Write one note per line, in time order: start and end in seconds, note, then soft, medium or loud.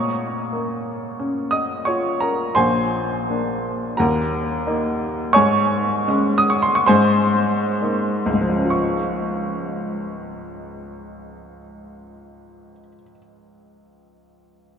0.00 2.54 A#2 medium
0.00 1.49 C#5 medium
0.00 1.49 A#5 medium
0.00 1.53 C#6 medium
0.52 1.61 A#3 medium
1.20 2.29 C#4 medium
1.51 1.85 D#5 medium
1.51 1.87 D#6 medium
1.85 2.58 F4 medium
1.85 2.20 C#5 medium
1.85 2.22 C#6 medium
2.20 2.55 A#4 medium
2.20 2.57 A#5 medium
2.55 3.95 A#1 medium
2.55 3.96 A#2 medium
2.55 3.95 C5 medium
2.55 3.95 G#5 medium
2.55 3.98 C6 loud
3.29 3.96 A#3 medium
3.29 3.96 D4 medium
3.97 5.32 D#2 medium
3.97 5.31 A#4 medium
3.97 5.31 F#5 medium
3.97 5.34 A#5 medium
4.67 5.31 A#3 medium
4.67 5.32 D#4 medium
5.33 6.86 G#2 medium
5.33 6.34 C#5 medium
5.33 6.34 G#5 medium
5.33 6.37 C#6 loud
6.08 6.85 G#3 medium
6.08 6.85 C#4 medium
6.38 6.51 D#6 loud
6.50 6.63 C#6 medium
6.62 6.76 C6 loud
6.75 6.89 C#6 loud
6.86 8.32 G#2 loud
6.86 8.68 C5 medium
6.86 8.68 G#5 medium
6.86 8.72 C6 loud
7.82 8.69 A#3 medium
7.82 8.69 D#4 medium
8.26 12.72 C#2 medium
8.33 12.79 G#2 medium
8.41 12.87 F3 medium
8.49 12.95 G#3 medium
8.57 13.02 C#4 medium
8.65 13.11 F4 medium
8.70 13.16 C#6 medium